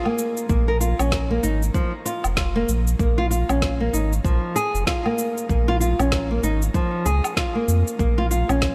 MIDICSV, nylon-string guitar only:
0, 0, Header, 1, 2, 480
1, 0, Start_track
1, 0, Key_signature, -5, "minor"
1, 0, Tempo, 625000
1, 381, Time_signature, 4, 2, 24, 8
1, 6719, End_track
2, 0, Start_track
2, 0, Title_t, "Nylon-string guitar"
2, 0, Program_c, 0, 24
2, 43, Note_on_c, 0, 58, 73
2, 369, Note_off_c, 0, 58, 0
2, 378, Note_on_c, 0, 58, 78
2, 516, Note_off_c, 0, 58, 0
2, 522, Note_on_c, 0, 70, 78
2, 610, Note_off_c, 0, 70, 0
2, 618, Note_on_c, 0, 65, 69
2, 755, Note_off_c, 0, 65, 0
2, 762, Note_on_c, 0, 61, 77
2, 989, Note_off_c, 0, 61, 0
2, 1002, Note_on_c, 0, 58, 76
2, 1090, Note_off_c, 0, 58, 0
2, 1099, Note_on_c, 0, 63, 79
2, 1236, Note_off_c, 0, 63, 0
2, 1339, Note_on_c, 0, 53, 80
2, 1469, Note_off_c, 0, 53, 0
2, 1578, Note_on_c, 0, 65, 78
2, 1716, Note_off_c, 0, 65, 0
2, 1820, Note_on_c, 0, 65, 80
2, 1957, Note_off_c, 0, 65, 0
2, 1963, Note_on_c, 0, 58, 98
2, 2055, Note_off_c, 0, 58, 0
2, 2299, Note_on_c, 0, 58, 82
2, 2436, Note_off_c, 0, 58, 0
2, 2441, Note_on_c, 0, 65, 104
2, 2498, Note_off_c, 0, 65, 0
2, 2538, Note_on_c, 0, 65, 66
2, 2676, Note_off_c, 0, 65, 0
2, 2683, Note_on_c, 0, 61, 76
2, 2909, Note_off_c, 0, 61, 0
2, 2921, Note_on_c, 0, 58, 74
2, 3009, Note_off_c, 0, 58, 0
2, 3020, Note_on_c, 0, 63, 75
2, 3156, Note_off_c, 0, 63, 0
2, 3259, Note_on_c, 0, 53, 83
2, 3490, Note_off_c, 0, 53, 0
2, 3500, Note_on_c, 0, 68, 101
2, 3731, Note_off_c, 0, 68, 0
2, 3740, Note_on_c, 0, 65, 77
2, 3876, Note_off_c, 0, 65, 0
2, 3883, Note_on_c, 0, 58, 75
2, 4211, Note_off_c, 0, 58, 0
2, 4220, Note_on_c, 0, 58, 78
2, 4356, Note_off_c, 0, 58, 0
2, 4363, Note_on_c, 0, 65, 107
2, 4419, Note_off_c, 0, 65, 0
2, 4458, Note_on_c, 0, 65, 73
2, 4595, Note_off_c, 0, 65, 0
2, 4604, Note_on_c, 0, 61, 84
2, 4830, Note_off_c, 0, 61, 0
2, 4844, Note_on_c, 0, 58, 74
2, 4931, Note_off_c, 0, 58, 0
2, 4941, Note_on_c, 0, 63, 79
2, 5077, Note_off_c, 0, 63, 0
2, 5180, Note_on_c, 0, 53, 83
2, 5411, Note_off_c, 0, 53, 0
2, 5419, Note_on_c, 0, 68, 100
2, 5650, Note_off_c, 0, 68, 0
2, 5660, Note_on_c, 0, 65, 80
2, 5796, Note_off_c, 0, 65, 0
2, 5800, Note_on_c, 0, 58, 72
2, 6129, Note_off_c, 0, 58, 0
2, 6139, Note_on_c, 0, 58, 73
2, 6276, Note_off_c, 0, 58, 0
2, 6281, Note_on_c, 0, 65, 106
2, 6338, Note_off_c, 0, 65, 0
2, 6380, Note_on_c, 0, 65, 74
2, 6516, Note_off_c, 0, 65, 0
2, 6522, Note_on_c, 0, 61, 78
2, 6719, Note_off_c, 0, 61, 0
2, 6719, End_track
0, 0, End_of_file